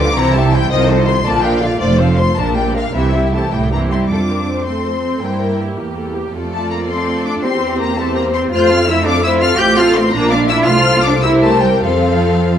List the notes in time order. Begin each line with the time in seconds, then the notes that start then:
Already playing: D2 D3
0.00 F3 F4 B4 D6
0.16 C2 C3 E3 E4 C5 A#5
0.35 G3 C4 G4 E5 A5
0.53 E3 E4 C5 G5
0.70 C2 C3 D#3 F4 C5 D#5
0.88 F3 D#4 A4 C5 D#5
1.06 D#3 F4 C5 C6
1.25 A#1 A#2 D3 F4 D5 A5
1.43 F3 D4 A#4 F5 G5
1.62 D3 F4 D5 F5
1.80 F1 F2 A3 F4 C5 D5
1.98 F3 C4 A4 C5 F5
2.17 A3 F4 C5 C6
2.36 A#1 A#2 A#3 D4 A#4 A5
2.55 G3 A#3 G4 D5 G5
2.74 A#3 D4 A#4 F5
2.93 C2 C3 E3 C4 E4 G4 E5
3.13 G3 E4 G4
3.33 E3 A3 C4 E4 G4 A5
3.52 C2 A2 G3 E4 G4 G5
3.72 G2 E3 A#3 C4 E4 G4 A#5
3.91 G3 C4 E4 G4 C6
4.10 F2 C4 D4 F4 A4 D6
4.30 A#4
4.48 C5
4.65 A3 C4 A4 C6
4.85 A3
5.04 C4
5.21 G2 G3 A#3 E4 A#4 C5 G5
5.42 A#4
5.61 G4
5.78 E2 G4
5.97 A4
6.15 G4
6.34 F2 A3 F4 A4 D5
6.53 A3 A5
6.70 A#3 A#5
6.89 A3 C4 A4 C6
7.26 D4 D6
7.44 E2 C4 G4 C5 C6
7.79 A#3 A#5
7.97 A3 C4 G4 C5 A5
8.16 A#3 A#5
8.35 C4 C6
8.52 F2 A3 F4 C5 F6
8.60 G6
8.66 F6
8.71 C4 A4 F5
8.88 A3 E4 F4 C5 E6
9.05 C4 D4 A4 F5 D6
9.23 A3 E4 F4 C5 E6
9.41 C4 F4 A4 F5 F6
9.59 A1 A3 F4 G4 C5 G6
9.78 C4 F4 A4 F5 F6
9.95 A3 C4 F4 C5 C6
10.12 A#1 A#3 D4 F4 D5 A#5
10.31 A#3 D4 F4 F5 D6
10.49 D4 E4 F4 D5 E6
10.66 C2 A3 F4 A4 C5 F6
10.97 A#3
11.03 D4 D6
11.22 C4 E4 G4 A#4 C5 E6
11.42 A3 A5
11.63 G3 G5
11.81 F2 F3 C4 F4 A4 C5 F5